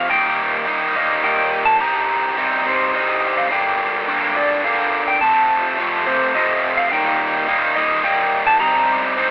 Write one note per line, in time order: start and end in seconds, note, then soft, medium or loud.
0.10 0.65 D#3 medium
0.10 0.67 G3 medium
0.10 0.67 A#3 medium
0.10 0.67 D#4 loud
0.10 0.98 G5 medium
0.66 0.94 D#3 medium
0.66 0.95 G3 medium
0.66 0.96 A#3 medium
0.66 0.95 D#4 medium
0.95 1.22 D#3 medium
0.95 1.24 G3 medium
0.95 1.24 A#3 medium
0.95 1.24 D#4 medium
0.95 1.25 D#5 medium
1.24 1.79 D#3 loud
1.24 1.81 G3 medium
1.24 1.81 A#3 loud
1.24 1.80 D#4 loud
1.24 1.65 G5 medium
1.65 1.80 A5 medium
1.80 2.36 C3 medium
1.80 2.38 G3 medium
1.80 2.37 C4 medium
1.80 2.38 D#4 medium
1.80 2.69 A#5 loud
2.37 2.65 C3 medium
2.37 2.65 G3 medium
2.37 2.65 C4 medium
2.37 2.66 D#4 medium
2.66 2.92 C3 medium
2.66 2.93 G3 medium
2.66 2.93 C4 medium
2.66 2.94 D#4 medium
2.66 2.93 C5 medium
2.94 3.49 C3 medium
2.94 3.50 G3 medium
2.94 3.50 C4 loud
2.94 3.50 D#4 medium
2.94 3.37 D#5 medium
3.38 3.52 F5 medium
3.51 4.07 G2 medium
3.51 4.07 D3 medium
3.51 4.08 G3 loud
3.51 4.08 A#3 medium
3.51 4.08 D4 medium
3.51 4.40 G5 medium
4.08 4.35 G2 medium
4.08 4.36 D3 medium
4.08 4.36 G3 medium
4.08 4.36 A#3 medium
4.08 4.37 D4 medium
4.36 4.64 G2 medium
4.36 4.64 D3 medium
4.36 4.64 G3 medium
4.36 4.65 A#3 medium
4.36 4.65 D4 medium
4.36 4.66 D5 medium
4.65 5.20 G2 medium
4.65 5.20 D3 loud
4.65 5.20 G3 loud
4.65 5.21 A#3 medium
4.65 5.21 D4 loud
4.65 5.07 F5 medium
5.08 5.21 G5 medium
5.21 5.77 F2 medium
5.21 5.78 C3 loud
5.21 5.79 F3 medium
5.21 5.78 A3 medium
5.21 5.79 C4 loud
5.21 6.09 A5 loud
5.78 6.06 F2 medium
5.78 6.06 C3 medium
5.78 6.07 F3 medium
5.78 6.07 A3 loud
5.78 6.07 C4 medium
6.06 6.34 F2 medium
6.06 6.34 C3 medium
6.06 6.35 F3 medium
6.06 6.35 A3 medium
6.06 6.35 C4 medium
6.06 6.36 C5 medium
6.35 6.90 F2 loud
6.35 6.90 C3 loud
6.35 6.90 F3 loud
6.35 6.90 A3 loud
6.35 6.91 C4 loud
6.35 6.74 D#5 medium
6.77 6.90 F5 medium
6.92 7.46 D#3 loud
6.92 7.48 G3 medium
6.92 7.48 A#3 loud
6.92 7.48 D#4 loud
6.92 7.79 G5 medium
7.47 7.75 D#3 medium
7.47 7.76 G3 medium
7.47 7.76 A#3 medium
7.47 7.77 D#4 medium
7.76 8.03 D#3 medium
7.76 8.04 G3 medium
7.76 8.04 A#3 medium
7.76 8.05 D#4 medium
7.76 8.05 D#5 medium
8.04 8.59 D#3 loud
8.04 8.60 G3 loud
8.04 8.59 A#3 loud
8.04 8.61 D#4 loud
8.04 8.48 G5 medium
8.47 8.59 A5 medium
8.60 9.16 C3 loud
8.60 9.16 G3 medium
8.60 9.17 C4 loud
8.60 9.17 D#4 loud
8.60 9.31 A#5 loud
9.17 9.31 C3 medium
9.17 9.31 G3 medium
9.17 9.31 C4 medium
9.17 9.31 D#4 loud